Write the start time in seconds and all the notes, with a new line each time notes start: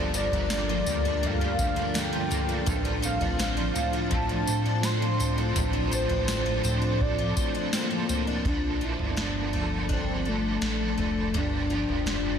Already playing: G1 G2 D3 F3 G3 A#3 D4 F4 G4 A4 A#4
0.14 A#3 D4 G4 D5, tambourine
0.19 F3
0.32 G1 D4, floor tom
0.50 G2 D3 F3 A#3 D4 G4 D5, snare, tambourine
0.69 F3
0.86 D2 A#3 D4 G4, floor tom, tambourine
0.91 F3
1.05 D4
1.22 G2 F3 A#3 D4, floor tom
1.26 G4 F5
1.41 F3
1.58 D2 A#3 D4 G4, kick, tambourine
1.62 F3
1.76 D4
1.94 G2 D3 F3 A#3 D4 G5, snare, tambourine
1.98 G4
2.13 F3
2.30 A#3 D4 G4, floor tom, tambourine
2.34 F3
2.49 D4
2.66 A1 A2 D3 F3 C4 D4 A4 C5, kick, floor tom, tambourine
2.85 F3
3.02 C4 D4 A4 F5, tambourine
3.06 F3
3.21 A1 D4, floor tom
3.39 A2 D3 F3 C4 D4 A4 F5, snare, tambourine
3.57 F3
3.74 A2 C4 D4 A4, floor tom, tambourine
3.78 F3
3.93 D4
4.11 A2 F3 C4 D4 A5, kick, floor tom
4.15 A4
4.29 F3
4.47 A2 F3 C4 D4 A4, tambourine
4.66 D4
4.83 A2 D3 F3 C4 D4 A4 C6, snare, tambourine
5.02 F3
5.20 F3 C4 D4 A4, floor tom, tambourine
5.38 D4
5.55 A1 A2 D3 F3 C4 D4 A4, floor tom, tambourine
5.73 F3
5.91 C4 D4 A4 C5, tambourine
5.96 F3
6.09 A1 D4, floor tom
6.28 A2 D3 F3 C4 D4 C5, snare, tambourine
6.32 A4
6.46 F3
6.64 A2 C4 D4 A4, floor tom, tambourine
6.68 F3 C4
6.82 D4
7.00 F3 C4 D4 D5, kick, floor tom
7.05 A4
7.19 F3
7.37 A2 C4 D4 A4, kick, tambourine
7.41 F3
7.55 D4
7.73 D3 F3 C4 D4 A4, snare, tambourine
7.77 A#3
7.90 F3
8.08 C4 D4 A4, floor tom, tambourine
8.12 F3
8.27 D4
8.45 A#1 A#2 D3 F3 A#3 D4 A4 D5 A5, kick, floor tom
8.81 F3 A#3 D4 E4 A4
8.86 F3
8.99 G1, floor tom
9.16 A#2 D3 F3 A#3 D4 A4, snare
9.21 D4
9.53 A3 A#3 D4 A4, floor tom
9.57 F3
9.89 F3 A#3 C4 D4 A4, kick, floor tom
10.25 A3 D4 A4
10.29 F3
10.62 A1 D3 F3 D4 A4, snare
10.98 F1 A3 D4 A4, floor tom
11.02 F3
11.34 G1 G2 D3 F3 A#3 D4 G5, floor tom
11.38 G4
11.70 F3 A#3 D4 G4
11.75 F3
11.89 F1, floor tom
12.05 G2 D3 F3 A#3 D4 G4, snare